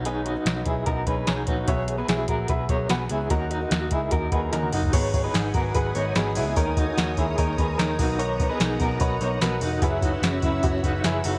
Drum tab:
CC |----------------|----------------|----------------|x---------------|
HH |x-x-x-x-x-x-x-x-|x-x-x-x-x-x-x-x-|x-x-x-x-x-x-x-o-|o-o-o-o-o-o-o-o-|
SD |----o-------o---|----o-------o---|----o-------o---|----o-------o---|
T1 |----------------|----------------|-------------o--|----------------|
T2 |----------------|----------------|--------------o-|----------------|
FT |----------------|----------------|---------------o|----------------|
BD |------o-o-o---o-|o-----o-o-o-----|o-----o-o-o-----|o-o---o-o-------|

CC |----------------|----------------|----------------|
HH |o-o-o-o-o-o-o-o-|o-o-o-o-o-o-o-o-|o-o-o-o-o-o-o-o-|
SD |----o-------o---|----o-------o---|----o-------o---|
T1 |----------------|----------------|----------------|
T2 |----------------|----------------|----------------|
FT |----------------|----------------|----------------|
BD |o-o---o-o-o---o-|--o---o-o-------|o-o---o-o-o-----|